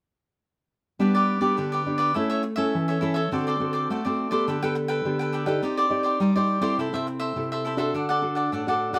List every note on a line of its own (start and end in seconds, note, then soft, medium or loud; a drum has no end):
0.99 1.55 G3 soft
0.99 1.38 B3 medium
0.99 1.13 D4 soft
0.99 1.39 D4 soft
0.99 1.39 G4 medium
0.99 1.13 G4 soft
0.99 1.14 B4 soft
0.99 1.13 D5 soft
1.15 1.41 G4 medium
1.15 1.41 B4 medium
1.15 1.40 D5 medium
1.41 1.81 B3 medium
1.41 1.81 D4 soft
1.41 1.81 G4 medium
1.41 1.56 G4 soft
1.41 1.56 B4 soft
1.41 1.55 D5 medium
1.57 2.13 D3 medium
1.57 1.71 D4 soft
1.57 1.71 G4 soft
1.57 1.71 B4 soft
1.57 1.71 D5 soft
1.72 1.99 G4 soft
1.72 1.98 B4 soft
1.72 1.97 D5 medium
1.86 2.11 B3 soft
1.86 2.11 D4 soft
1.86 2.11 G4 medium
1.98 2.14 G4 medium
1.98 2.13 B4 medium
1.98 2.13 D5 medium
2.14 2.71 A3 medium
2.14 2.43 C#4 soft
2.14 2.28 E4 medium
2.14 2.43 E4 soft
2.14 2.29 A4 soft
2.14 2.43 A4 medium
2.14 2.29 C#5 soft
2.14 2.28 E5 soft
2.30 2.42 A4 medium
2.30 2.42 C#5 medium
2.30 2.43 E5 medium
2.43 muted cavaquinho stroke soft
2.56 2.97 C#4 soft
2.56 2.97 E4 soft
2.56 2.86 A4 medium
2.56 2.97 A4 medium
2.56 2.86 C#5 medium
2.56 2.85 E5 medium
2.75 3.29 E3 medium
2.88 3.01 A4 soft
2.88 3.01 C#5 medium
2.88 3.01 E5 medium
3.01 3.19 C#4 soft
3.01 3.15 E4 soft
3.01 3.19 E4 medium
3.01 3.15 A4 soft
3.01 3.20 A4 medium
3.01 3.14 C#5 soft
3.01 3.13 E5 soft
3.14 3.30 A4 medium
3.14 3.30 C#5 medium
3.14 3.29 E5 medium
3.31 3.87 D3 medium
3.31 3.56 C4 medium
3.31 3.45 F#4 soft
3.31 3.56 F#4 medium
3.31 3.45 A4 soft
3.31 3.56 A4 medium
3.31 3.45 C5 soft
3.31 3.46 D5 soft
3.47 3.74 A4 medium
3.47 3.73 C5 medium
3.47 3.72 D5 medium
3.60 3.99 C4 soft
3.60 3.99 F#4 soft
3.60 3.99 A4 medium
3.73 3.88 A4 soft
3.73 3.88 C5 medium
3.73 3.87 D5 medium
3.90 4.45 A3 soft
3.90 4.03 F#4 soft
3.90 4.03 A4 soft
3.90 4.04 C5 soft
3.90 4.03 D5 soft
4.05 4.29 C4 medium
4.05 4.29 F#4 soft
4.05 4.32 A4 soft
4.05 4.29 A4 medium
4.05 4.31 C5 soft
4.05 4.30 D5 medium
4.31 4.56 B3 medium
4.31 4.56 G4 medium
4.31 4.57 A4 medium
4.31 4.46 A4 medium
4.31 4.46 C5 medium
4.31 4.45 D5 medium
4.47 5.02 D3 soft
4.47 4.61 D4 soft
4.47 4.61 A4 soft
4.47 4.61 B4 soft
4.47 4.61 G5 medium
4.62 5.01 B3 medium
4.62 5.01 G4 medium
4.62 5.01 A4 medium
4.62 4.74 A4 medium
4.62 4.75 B4 medium
4.62 4.75 G5 medium
4.75 muted cavaquinho stroke soft
4.88 5.18 A4 medium
4.88 5.18 B4 medium
4.88 5.17 G5 medium
5.05 5.60 D3 medium
5.05 5.44 B3 medium
5.05 5.44 G4 medium
5.05 5.44 A4 medium
5.19 5.32 A4 soft
5.19 5.33 B4 medium
5.19 5.33 G5 medium
5.33 5.47 D4 soft
5.33 5.47 A4 soft
5.33 5.46 B4 soft
5.33 5.45 G5 medium
5.46 5.86 D#4 medium
5.46 5.86 G4 medium
5.46 5.62 A4 medium
5.46 5.61 B4 medium
5.46 5.86 D5 medium
5.46 5.61 G5 medium
5.62 6.18 C4 medium
5.62 5.76 D#4 soft
5.62 5.76 G4 soft
5.62 5.77 C5 soft
5.62 5.76 D5 soft
5.77 6.04 G4 soft
5.77 6.03 C5 medium
5.77 6.02 D5 medium
5.90 6.30 D#4 soft
5.90 6.30 G4 soft
5.90 6.30 D5 medium
6.03 6.19 G4 soft
6.03 6.19 C5 medium
6.03 6.18 D5 medium
6.20 6.75 G3 medium
6.20 6.34 D#4 soft
6.20 6.34 G4 soft
6.20 6.35 C5 soft
6.20 6.34 D5 soft
6.36 6.60 D#4 soft
6.36 6.60 G4 medium
6.36 6.62 G4 soft
6.36 6.61 C5 medium
6.36 6.60 D5 medium
6.61 6.87 C4 medium
6.61 6.87 E4 medium
6.61 6.77 G4 medium
6.61 6.87 A4 medium
6.61 6.77 C5 medium
6.61 6.76 D5 medium
6.78 7.33 C3 soft
6.78 6.92 E4 soft
6.78 6.92 A4 soft
6.78 6.93 C5 soft
6.78 6.93 E5 soft
6.93 7.32 C4 medium
6.93 7.32 E4 medium
6.93 7.32 A4 medium
6.93 7.06 A4 medium
6.93 7.07 C5 medium
6.93 7.07 E5 medium
7.07 muted cavaquinho stroke soft
7.20 7.50 A4 medium
7.20 7.49 C5 medium
7.20 7.49 E5 medium
7.36 7.91 C3 soft
7.36 7.75 C4 soft
7.36 7.75 E4 soft
7.36 7.75 A4 medium
7.52 7.64 A4 soft
7.52 7.65 C5 soft
7.52 7.65 E5 medium
7.65 7.78 E4 soft
7.65 7.79 A4 soft
7.65 7.78 C5 soft
7.65 7.77 E5 soft
7.77 8.17 D4 medium
7.77 8.17 F#4 medium
7.77 8.18 A4 medium
7.77 7.93 A4 medium
7.77 7.93 C5 medium
7.77 7.92 E5 medium
7.94 8.49 D3 soft
7.94 8.08 D4 soft
7.94 8.08 A4 soft
7.94 8.08 D5 soft
7.94 8.08 F#5 soft
8.09 8.36 A4 soft
8.09 8.35 D5 medium
8.09 8.34 F#5 medium
8.22 8.61 D4 medium
8.22 8.61 F#4 soft
8.22 8.62 A4 medium
8.35 8.51 A4 soft
8.35 8.50 D5 soft
8.35 8.50 F#5 soft
8.52 8.99 A2 soft
8.52 8.66 D4 soft
8.52 8.66 A4 soft
8.52 8.66 D5 soft
8.52 8.67 F#5 soft
8.67 8.91 D4 soft
8.67 8.91 F#4 soft
8.67 8.92 A4 medium
8.67 8.95 A4 soft
8.67 8.94 D5 medium
8.67 8.93 F#5 medium
8.93 8.99 D4 medium
8.93 8.99 F#4 medium
8.93 8.99 A4 medium
8.93 8.99 D5 medium
8.93 8.99 F#5 medium